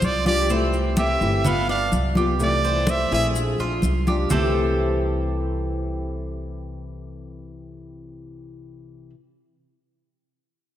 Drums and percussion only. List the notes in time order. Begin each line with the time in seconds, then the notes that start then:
0.02 high conga, maracas
0.26 high conga, maracas
0.49 high conga, maracas
0.73 high conga, maracas
0.97 high conga, maracas
1.21 high conga, maracas
1.44 high conga, low conga, maracas
1.68 high conga, maracas
1.92 high conga, maracas
2.15 high conga, maracas
2.40 maracas
2.63 high conga, maracas
2.87 high conga, maracas
3.11 high conga, maracas
3.34 high conga, maracas
3.58 high conga, maracas
3.82 high conga, maracas
4.07 high conga, maracas
4.30 low conga, maracas